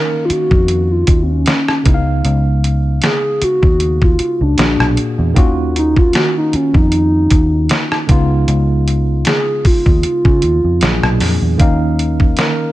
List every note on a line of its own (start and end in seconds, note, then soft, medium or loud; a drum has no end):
0.00 1.81 D#3 medium
0.00 1.81 A#3 medium
0.00 1.82 C#4 medium
0.00 1.83 D#4 medium
0.00 0.27 A#4 loud
0.00 1.82 F5 medium
0.25 0.33 F4 medium
0.30 0.93 F#4 loud
0.30 muted fingered electric bass stroke soft
0.30 closed hi-hat medium
0.51 1.04 F2 loud
0.51 kick loud
0.68 closed hi-hat medium
0.92 1.25 F4 medium
1.07 1.43 D#2 medium
1.07 kick medium
1.07 closed hi-hat medium
1.23 1.32 C4 medium
1.31 1.87 C#4 medium
1.46 snare loud
1.46 closed hi-hat medium
1.68 cross-stick loud
1.83 2.21 C#2 loud
1.83 4.53 C#3 medium
1.83 4.54 G#3 medium
1.83 4.54 B3 medium
1.83 4.55 D#4 medium
1.83 kick loud
1.83 closed hi-hat medium
1.88 1.94 E4 medium
1.94 4.59 F5 medium
2.25 2.99 C#2 loud
2.25 closed hi-hat medium
2.64 closed hi-hat medium
3.02 3.45 G#4 loud
3.02 snare loud
3.02 closed hi-hat medium
3.42 4.05 F#4 loud
3.42 muted fingered electric bass stroke soft
3.42 closed hi-hat medium
3.63 4.16 D#2 medium
3.63 kick loud
3.80 closed hi-hat medium
4.02 4.44 F4 loud
4.02 kick loud
4.19 muted fingered electric bass stroke medium
4.19 closed hi-hat medium
4.41 4.57 C#2 loud
4.41 4.98 D4 medium
4.57 4.78 A#1 loud
4.57 5.36 A#2 medium
4.57 5.34 A#3 medium
4.57 5.36 D4 medium
4.57 5.37 F#4 medium
4.57 5.37 G#4 medium
4.57 snare loud
4.57 closed hi-hat medium
4.80 4.96 B1 medium
4.80 cross-stick loud
4.97 closed hi-hat medium
5.19 5.35 E2 loud
5.34 6.10 D#2 loud
5.34 8.04 D#3 medium
5.34 8.05 A#3 medium
5.34 8.05 C#4 medium
5.34 8.06 F4 medium
5.34 kick loud
5.34 closed hi-hat medium
5.38 8.06 F#4 medium
5.76 6.00 D#4 loud
5.76 closed hi-hat medium
5.96 6.18 F4 loud
5.96 kick loud
6.13 6.36 F#4 loud
6.13 snare loud
6.13 closed hi-hat medium
6.38 6.57 D#4 medium
6.53 6.78 C#4 medium
6.53 muted fingered electric bass stroke soft
6.53 closed hi-hat medium
6.74 7.27 F2 loud
6.74 8.10 D#4 loud
6.74 kick loud
6.92 closed hi-hat medium
7.30 7.67 D#2 loud
7.30 kick medium
7.30 closed hi-hat medium
7.69 snare loud
7.69 closed hi-hat medium
7.92 cross-stick loud
8.07 8.45 C#2 loud
8.07 10.77 C#3 medium
8.07 10.77 G#3 medium
8.07 10.78 B3 medium
8.07 10.78 D#4 medium
8.07 kick loud
8.07 closed hi-hat medium
8.11 10.79 F4 medium
8.48 9.22 C#2 loud
8.48 closed hi-hat medium
8.88 closed hi-hat medium
9.25 9.68 G#4 loud
9.25 snare loud
9.25 closed hi-hat medium
9.65 10.05 F4 loud
9.65 muted fingered electric bass stroke soft
9.65 kick loud
9.65 open hi-hat soft
9.86 10.02 D#2 medium
9.86 kick loud
10.03 11.18 F4 loud
10.03 closed hi-hat medium
10.25 10.41 C#3 loud
10.25 kick loud
10.42 10.62 D#2 medium
10.42 closed hi-hat medium
10.64 10.80 F2 medium
10.81 11.01 A#1 loud
10.81 11.59 A#2 medium
10.81 11.60 F#3 medium
10.81 11.57 A#3 medium
10.81 11.60 D4 medium
10.81 11.60 G#4 medium
10.81 snare loud
10.81 closed hi-hat medium
11.03 11.19 B1 loud
11.03 cross-stick medium
11.20 11.40 F2 medium
11.20 snare medium
11.20 open hi-hat medium
11.42 11.58 E2 medium
11.58 12.34 D#2 loud
11.58 12.72 D#3 medium
11.58 12.72 A#3 medium
11.58 12.72 C#4 medium
11.58 12.72 F5 medium
11.58 kick loud
11.58 closed hi-hat medium
11.62 12.72 D#4 medium
11.99 closed hi-hat medium
12.20 kick medium
12.37 12.72 A#4 loud
12.37 snare loud
12.37 closed hi-hat medium